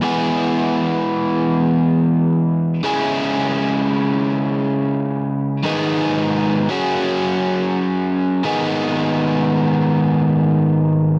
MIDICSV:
0, 0, Header, 1, 2, 480
1, 0, Start_track
1, 0, Key_signature, 5, "minor"
1, 0, Tempo, 500000
1, 10743, End_track
2, 0, Start_track
2, 0, Title_t, "Overdriven electric guitar"
2, 0, Program_c, 0, 29
2, 17, Note_on_c, 0, 40, 85
2, 27, Note_on_c, 0, 52, 93
2, 32, Note_on_c, 0, 56, 89
2, 39, Note_on_c, 0, 59, 99
2, 41, Note_on_c, 0, 64, 93
2, 43, Note_on_c, 0, 68, 99
2, 2701, Note_off_c, 0, 40, 0
2, 2706, Note_off_c, 0, 52, 0
2, 2712, Note_off_c, 0, 59, 0
2, 2713, Note_off_c, 0, 64, 0
2, 2720, Note_on_c, 0, 49, 93
2, 2724, Note_off_c, 0, 56, 0
2, 2727, Note_on_c, 0, 56, 91
2, 2736, Note_on_c, 0, 61, 97
2, 2741, Note_off_c, 0, 68, 0
2, 2742, Note_on_c, 0, 64, 96
2, 2745, Note_on_c, 0, 68, 101
2, 5398, Note_off_c, 0, 49, 0
2, 5405, Note_on_c, 0, 44, 93
2, 5406, Note_off_c, 0, 61, 0
2, 5409, Note_off_c, 0, 64, 0
2, 5415, Note_on_c, 0, 51, 89
2, 5417, Note_off_c, 0, 56, 0
2, 5421, Note_on_c, 0, 56, 94
2, 5424, Note_on_c, 0, 59, 89
2, 5428, Note_off_c, 0, 68, 0
2, 5429, Note_on_c, 0, 63, 98
2, 5432, Note_on_c, 0, 68, 94
2, 6403, Note_off_c, 0, 44, 0
2, 6408, Note_off_c, 0, 51, 0
2, 6412, Note_off_c, 0, 59, 0
2, 6414, Note_off_c, 0, 63, 0
2, 6418, Note_off_c, 0, 56, 0
2, 6422, Note_on_c, 0, 54, 96
2, 6434, Note_on_c, 0, 61, 93
2, 6441, Note_on_c, 0, 66, 98
2, 6442, Note_off_c, 0, 68, 0
2, 6446, Note_on_c, 0, 68, 99
2, 8088, Note_off_c, 0, 54, 0
2, 8094, Note_off_c, 0, 61, 0
2, 8098, Note_off_c, 0, 66, 0
2, 8099, Note_on_c, 0, 44, 80
2, 8105, Note_on_c, 0, 51, 93
2, 8110, Note_on_c, 0, 56, 84
2, 8114, Note_on_c, 0, 59, 103
2, 8119, Note_on_c, 0, 63, 91
2, 8122, Note_off_c, 0, 68, 0
2, 8125, Note_on_c, 0, 68, 94
2, 10743, Note_off_c, 0, 44, 0
2, 10743, Note_off_c, 0, 51, 0
2, 10743, Note_off_c, 0, 56, 0
2, 10743, Note_off_c, 0, 59, 0
2, 10743, Note_off_c, 0, 63, 0
2, 10743, Note_off_c, 0, 68, 0
2, 10743, End_track
0, 0, End_of_file